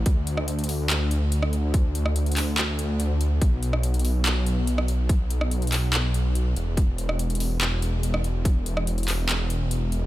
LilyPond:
<<
  \new Staff \with { instrumentName = "Detuned saw bass" } { \clef bass \time 4/4 \key e \mixolydian \tempo 4 = 143 d,1~ | d,1 | b,,1~ | b,,2.~ b,,8 e,,8~ |
e,,1~ | e,,1 | }
  \new DrumStaff \with { instrumentName = "Drums" } \drummode { \time 4/4 <hh bd>8 hh16 ss16 hh16 hh32 hh32 hho8 <hc hh>8 hh8 hh16 ss16 hh8 | <hh bd>8 hh16 ss16 hh16 hh32 hh32 <hc hho>8 <hc hh>8 hh8 hh8 hh8 | <hh bd>8 hh16 ss16 hh16 hh32 hh32 hho8 <hc hh>8 hh8 hh16 ss16 hh8 | <hh bd>8 hh16 ss16 hh16 hh32 hh32 <hc hho>8 <hc hh>8 hh8 hh8 hh8 |
<hh bd>8 hh16 ss16 hh16 hh32 hh32 hho8 <hc hh>8 hh8 hh16 ss16 hh8 | <hh bd>8 hh16 ss16 hh16 hh32 hh32 <hc hho>8 <hc hh>8 hh8 hh8 hh8 | }
>>